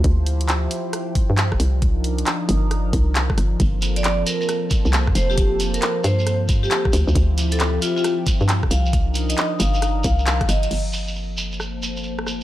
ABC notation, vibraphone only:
X:1
M:4/4
L:1/16
Q:"Swing 16ths" 1/4=135
K:Gm
V:1 name="Vibraphone"
z16 | z16 | z3 d d z B B z6 c G | G z2 B B z c c z3 G G z3 |
z3 A A z F F z6 f z | z3 e2 z f f z2 f4 e e | z16 |]